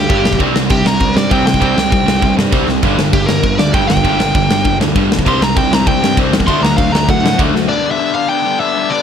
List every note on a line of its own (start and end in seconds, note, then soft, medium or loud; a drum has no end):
0.00 0.39 G2 medium
0.00 0.38 D3 loud
0.00 0.41 G3 loud
0.00 0.39 G4 loud
0.08 0.24 G1 medium
0.08 0.23 G2 medium
0.08 0.23 D3 loud
0.08 0.24 G3 loud
0.08 kick loud
0.08 crash medium
0.24 0.39 B1 medium
0.24 0.38 G2 medium
0.24 0.38 D3 medium
0.24 snare loud
0.33 kick medium
0.40 0.54 C2 medium
0.40 0.54 C3 loud
0.40 0.54 G3 loud
0.40 0.55 C4 loud
0.40 kick loud
0.40 crash medium
0.54 0.69 C2 medium
0.54 0.69 C3 medium
0.54 0.69 G3 medium
0.54 snare loud
0.70 0.85 C2 medium
0.70 0.84 C3 medium
0.70 0.84 G3 medium
0.70 0.85 G4 loud
0.70 kick loud
0.70 crash medium
0.85 1.00 C2 medium
0.85 0.99 C3 medium
0.85 0.99 G3 medium
0.85 1.16 A#4 medium
0.85 snare loud
1.00 1.15 C2 medium
1.00 1.14 C3 medium
1.00 1.15 G3 loud
1.00 kick loud
1.00 crash medium
1.16 1.31 G2 medium
1.16 1.30 C3 medium
1.16 1.30 G3 medium
1.16 1.31 D5 medium
1.16 snare loud
1.31 1.45 C2 medium
1.31 1.45 C3 medium
1.31 1.45 G3 loud
1.31 1.46 C4 loud
1.31 1.45 G5 medium
1.31 kick loud
1.31 crash medium
1.46 1.61 C2 medium
1.46 1.59 C3 medium
1.46 1.60 G3 medium
1.46 2.35 G5 loud
1.46 snare loud
1.54 kick medium
1.61 1.76 C2 medium
1.61 1.75 C3 medium
1.61 1.76 G3 loud
1.61 1.76 C4 loud
1.61 kick loud
1.61 crash medium
1.76 1.91 C2 medium
1.76 1.90 C3 medium
1.76 1.91 G3 medium
1.76 snare loud
1.92 2.07 C2 loud
1.92 2.06 C3 medium
1.92 2.06 G3 medium
1.92 kick loud
1.92 crash medium
2.07 2.22 C2 medium
2.07 2.21 C3 medium
2.07 2.21 G3 medium
2.07 snare loud
2.22 2.37 C2 medium
2.22 2.36 C3 medium
2.22 2.37 G3 medium
2.22 kick loud
2.22 crash medium
2.37 2.52 G2 loud
2.37 2.51 C3 medium
2.37 2.52 G3 medium
2.37 snare loud
2.52 2.67 C2 medium
2.52 2.67 C3 medium
2.52 2.67 G3 loud
2.52 2.68 C4 medium
2.52 kick loud
2.52 crash medium
2.68 2.83 C2 medium
2.68 2.82 C3 medium
2.68 2.82 G3 medium
2.68 snare medium
2.83 2.97 G1 medium
2.83 2.97 G2 loud
2.83 2.97 D3 medium
2.83 2.98 G3 loud
2.83 kick loud
2.83 crash medium
2.98 3.13 G1 medium
2.98 3.12 G2 medium
2.98 3.12 D3 medium
2.98 snare loud
3.13 3.28 G1 medium
3.13 3.27 G2 medium
3.13 3.27 D3 medium
3.13 3.27 G4 loud
3.13 kick loud
3.13 crash medium
3.27 3.43 G1 medium
3.27 3.42 G2 medium
3.27 3.42 D3 medium
3.27 3.57 A#4 medium
3.27 snare loud
3.43 3.58 G1 loud
3.43 3.57 G2 medium
3.43 3.57 D3 medium
3.43 kick loud
3.43 crash medium
3.58 3.74 D2 medium
3.58 3.72 G2 medium
3.58 3.72 D3 medium
3.58 3.73 D5 loud
3.58 snare loud
3.74 3.89 G1 medium
3.74 3.88 G2 medium
3.74 3.88 D3 loud
3.74 3.89 G3 loud
3.74 3.88 G5 loud
3.74 kick loud
3.74 crash medium
3.89 4.04 G1 medium
3.89 4.03 G2 medium
3.89 4.03 D3 medium
3.89 4.77 G5 loud
3.89 snare loud
3.97 kick medium
4.04 4.19 G1 loud
4.04 4.18 G2 medium
4.04 4.19 D3 loud
4.04 4.19 G3 loud
4.04 kick loud
4.04 crash medium
4.19 4.34 G1 medium
4.19 4.33 G2 medium
4.19 4.34 D3 medium
4.19 snare loud
4.35 4.50 G1 medium
4.35 4.49 G2 medium
4.35 4.49 D3 medium
4.35 kick loud
4.35 crash medium
4.50 4.65 G1 medium
4.50 4.63 G2 medium
4.50 4.64 D3 medium
4.50 snare loud
4.64 4.80 G1 loud
4.64 4.78 G2 medium
4.64 4.79 D3 medium
4.64 kick loud
4.64 crash medium
4.80 4.95 D2 medium
4.80 4.94 G2 medium
4.80 4.94 D3 medium
4.80 snare loud
4.96 5.09 G1 medium
4.96 5.10 G2 loud
4.96 5.10 D3 loud
4.96 5.10 G3 loud
4.96 kick loud
4.96 crash medium
5.10 5.25 B1 medium
5.10 5.25 G2 medium
5.10 5.25 D3 medium
5.10 snare loud
5.19 kick medium
5.25 5.39 C2 loud
5.25 5.40 C3 loud
5.25 5.40 G3 loud
5.25 5.41 C4 loud
5.25 5.42 C6 medium
5.25 kick loud
5.25 crash medium
5.40 5.55 C2 medium
5.40 5.55 C3 medium
5.40 5.55 G3 medium
5.40 5.57 A#5 loud
5.40 snare loud
5.56 5.70 C2 loud
5.56 5.69 C3 medium
5.56 5.70 G3 medium
5.56 5.73 G5 medium
5.56 kick loud
5.56 crash medium
5.71 5.86 C2 medium
5.71 5.85 C3 medium
5.71 5.85 G3 medium
5.71 5.87 A#5 loud
5.71 snare loud
5.87 5.99 C2 loud
5.87 6.00 C3 medium
5.87 6.01 G3 medium
5.87 6.17 G5 loud
5.87 kick loud
5.87 crash medium
6.00 6.15 G2 medium
6.00 6.16 C3 medium
6.00 6.16 G3 medium
6.00 snare loud
6.17 6.30 C2 medium
6.17 6.31 C3 loud
6.17 6.32 G3 medium
6.17 6.32 C4 loud
6.17 kick loud
6.17 crash medium
6.31 6.46 E2 medium
6.31 6.46 C3 medium
6.31 6.46 G3 medium
6.31 snare loud
6.40 kick medium
6.47 6.61 D2 loud
6.47 6.61 D3 loud
6.47 6.62 F#3 loud
6.47 6.62 A3 loud
6.47 6.62 D4 loud
6.47 7.69 D4 loud
6.47 6.63 C6 loud
6.47 kick loud
6.47 crash medium
6.62 6.77 D2 medium
6.62 6.76 D3 medium
6.62 6.76 F#3 medium
6.62 6.77 A3 medium
6.62 6.77 A#5 loud
6.62 snare loud
6.77 6.91 D2 loud
6.77 6.91 D3 medium
6.77 6.91 F#3 medium
6.77 6.92 A3 medium
6.77 6.92 F5 medium
6.77 kick loud
6.77 crash medium
6.92 7.07 D2 medium
6.92 7.07 D3 medium
6.92 7.07 F#3 medium
6.92 7.08 A3 medium
6.92 7.07 A#5 loud
6.92 snare loud
7.08 7.23 D2 loud
7.08 7.22 D3 medium
7.08 7.22 F#3 medium
7.08 7.22 A3 medium
7.08 7.39 F#5 loud
7.08 kick loud
7.08 crash medium
7.23 7.38 A2 medium
7.23 7.37 D3 medium
7.23 7.37 F#3 medium
7.23 7.38 A3 medium
7.23 snare loud
7.39 7.53 D2 medium
7.39 7.53 D3 loud
7.39 7.53 F#3 loud
7.39 7.54 A3 loud
7.39 7.53 D4 loud
7.39 kick loud
7.39 crash medium
7.54 7.69 D2 medium
7.54 7.67 D3 medium
7.54 7.67 F#3 medium
7.54 7.67 A3 medium
7.54 snare medium
7.68 7.84 G2 loud
7.68 7.84 D3 medium
7.68 7.84 G3 loud
7.68 7.83 B3 loud
7.68 7.83 D4 loud
7.68 7.91 D5 medium
7.83 7.98 G2 medium
7.83 7.98 D3 medium
7.83 7.99 G3 medium
7.83 8.00 B3 loud
7.83 8.00 D4 medium
7.91 8.15 E5 loud
7.98 8.15 G2 loud
7.98 8.15 D3 loud
7.98 8.14 G3 medium
7.98 8.14 B3 loud
7.98 8.13 D4 loud
8.14 8.28 G2 medium
8.14 8.29 D3 medium
8.14 8.29 G3 medium
8.14 8.30 B3 medium
8.14 8.30 D4 medium
8.14 8.28 F5 loud
8.29 8.45 G2 medium
8.29 8.45 D3 loud
8.29 8.44 G3 medium
8.29 8.44 B3 loud
8.29 8.43 D4 loud
8.29 8.60 G5 loud
8.44 8.58 G2 medium
8.44 8.58 D3 medium
8.44 8.59 G3 medium
8.44 8.59 B3 loud
8.44 8.60 D4 loud
8.59 8.75 G2 medium
8.59 8.75 D3 loud
8.59 8.74 G3 loud
8.59 8.74 B3 loud
8.59 8.73 D4 loud
8.59 8.91 E5 loud
8.74 8.89 G2 medium
8.74 8.90 D3 medium
8.74 8.91 G3 medium
8.74 8.91 B3 medium
8.74 8.91 D4 loud
8.90 9.02 G2 loud
8.90 9.02 D3 loud
8.90 9.02 G3 loud
8.90 9.02 B3 loud
8.90 9.02 D4 loud
8.90 9.02 D5 loud